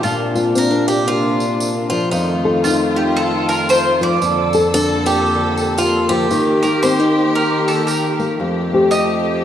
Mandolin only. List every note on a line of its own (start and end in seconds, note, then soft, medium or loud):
0.03 0.42 F4 medium
2.64 2.96 F4 medium
2.96 3.17 G4 medium
3.17 3.48 A4 medium
3.49 3.69 A#4 medium
3.70 3.99 C5 medium
4.03 4.60 D5 medium
6.63 6.82 A#4 medium
6.83 7.31 C5 medium
7.35 7.65 A#4 medium
7.68 7.87 A4 medium
7.87 8.35 A#4 medium
8.91 9.44 D#5 medium